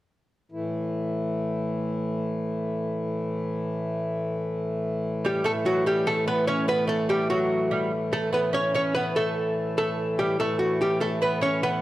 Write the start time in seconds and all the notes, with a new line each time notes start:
0.52 A2 E3
5.25 G3 G4
5.44 A2 E3 A3 A4
5.66 F#3 F#4
5.86 G3 G4
6.07 A3 A4
6.28 B3 B4
6.47 C#4 C#5
6.68 B3 B4
6.87 A3 A4
7.09 G3 G4
7.30 F#3 F#4
7.71 G3
8.13 A3 A4
8.33 B3 B4
8.53 C#4 C#5
8.75 C#4 C#5
8.95 B3 B4
9.16 A3 A4
9.78 A3 A4
10.19 G3 G4
10.38 A2 E3 A3 A4
10.59 F#4
10.82 G3 G4
11.01 A3 A4
11.22 B3 B4
11.41 C#4 C#5
11.63 B3 B4